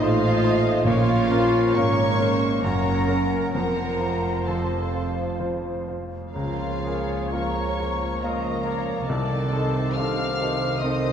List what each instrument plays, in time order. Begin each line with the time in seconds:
Already playing: grand piano A#2 A3 D#4 C5, bassoon A3, cor anglais D#5
0.00 double bass section A1, cello section A2, french horn section A3 D#4, grand piano A3 D#4 C5, clarinet F4, violin section F4 F5, flute C5, viola section D#5
0.44 grand piano D#4 C5
0.84 double bass section A#1, timpani A#2, cello section A#2, grand piano A#2, french horn section A#3 C#4, bassoon A#3, violin section F4 F5, clarinet F4, cor anglais C#5, flute C#5, viola section C#5
1.31 grand piano C#4 A#4, viola section C5
1.74 double bass section G#1, cello section G#2, french horn section A#3 C#4, grand piano A#3 C#4 A#4, viola section A#4, violin section C#5 C#6, clarinet C#5, flute A#5
2.19 grand piano C#4 A#4, viola section C5
2.62 double bass section F#1, cello section F#2, grand piano F#2, french horn section A#3 C#4, violin section A#4 A#5, clarinet A#4, viola section C#5, flute F#5
3.09 grand piano C#4 A#4, viola section A#4
3.53 double bass section F1, cello section F2, grand piano F2, french horn section F3 C4, bassoon F3, clarinet A#4, violin section A#4 A#5, cor anglais C5, viola section C5, flute F#5
3.99 grand piano F4 C5
4.47 french horn section F3 C4, grand piano F3 F4 C5, violin section A4 A5, clarinet A4, flute F5
4.94 grand piano F4 C5
5.39 grand piano F3 F4 C5
5.88 grand piano F4 C5
6.33 double bass section C#2, grand piano C#2, cello section C#3, bassoon C#3, french horn section F3 A#3, clarinet F4, violin section F4 F5, cor anglais A#4, viola section A#4, flute C#5
6.84 grand piano F4 A#4, cor anglais G#4, viola section C#5
7.31 french horn section F3 A#3, bassoon F3, grand piano A#3 F4 A#4, cor anglais A#4, violin section C#5 C#6, clarinet C#5, flute A#5
7.78 grand piano F4 A#4, cor anglais A#4
8.20 french horn section F3 A#3, grand piano A#3, clarinet A#4, violin section A#4 A#5, cor anglais C#5, flute F5
8.24 grand piano F4 A#4, viola section D#5
8.66 grand piano F4 A#4, viola section C#5, cor anglais D5
9.05 double bass section C2, grand piano C2, cello section C3, french horn section D#3, bassoon D#3, violin section A4 A5, clarinet A4, viola section D5, flute D#5
9.10 french horn section C4
9.52 grand piano D#4 A4, viola section C5
9.95 bassoon D3, viola section A4, cor anglais C5, clarinet F5, violin section F5 F6, flute D6
10.00 grand piano C4 D#4 A4
10.40 bassoon C3, grand piano D#4 A4, viola section A#4
10.81 french horn section D#3 C4, bassoon D#3, grand piano C4 D#4, viola section C5, cor anglais C5, clarinet D#5, violin section D#5 D#6, flute C6
10.86 grand piano A4